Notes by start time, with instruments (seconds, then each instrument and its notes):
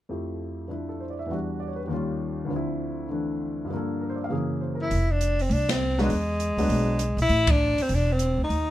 0.09 grand piano F2 F3 A3 E4 G4
0.68 grand piano F3 D4 E4
0.89 grand piano A4
1.00 grand piano C5
1.10 grand piano D5
1.19 grand piano E5
1.26 grand piano E2 E3 G3
1.30 grand piano D4 F#4
1.60 grand piano D5
1.68 grand piano C#5
1.76 grand piano B4
1.83 grand piano G4
1.88 grand piano D#2 D#3 G3
1.92 grand piano C#4 F4
2.45 grand piano D2 D3
2.50 grand piano F3 C4
2.56 grand piano E4
3.09 grand piano D3 E3 A3 D4
3.65 grand piano G2 D3
3.70 grand piano F3 A#3
3.77 grand piano A4
4.01 grand piano A#4
4.10 grand piano C5
4.16 grand piano D5
4.24 grand piano F5
4.29 grand piano F#2 C#3 E3 A#3 G#4
4.61 grand piano C5
4.75 grand piano A#4
4.81 tenor saxophone E4
4.90 upright bass F1, kick, open hi-hat
5.12 tenor saxophone D4
5.21 closed hi-hat
5.39 tenor saxophone C4, open hi-hat
5.49 upright bass C2, tenor saxophone D4, kick, open hi-hat
5.69 tenor saxophone C4, snare, ride
5.98 grand piano F#3 G#3 B3 D4, tenor saxophone G#3, snare
6.09 upright bass E2, kick, open hi-hat
6.40 closed hi-hat
6.57 upright bass D2, grand piano F#3 G#3 B3 D4, open hi-hat
6.69 upright bass B1, kick, open hi-hat
6.99 closed hi-hat
7.17 upright bass B1, open hi-hat
7.21 tenor saxophone E4
7.29 upright bass A1, kick, open hi-hat
7.47 tenor saxophone D4, kick, ride
7.78 muted upright bass stroke, open hi-hat
7.82 tenor saxophone C4
7.89 upright bass E1, kick, open hi-hat
7.95 tenor saxophone D4
8.12 tenor saxophone C4
8.19 closed hi-hat
8.37 upright bass D2
8.44 tenor saxophone D#4
8.49 upright bass D#2, kick, open hi-hat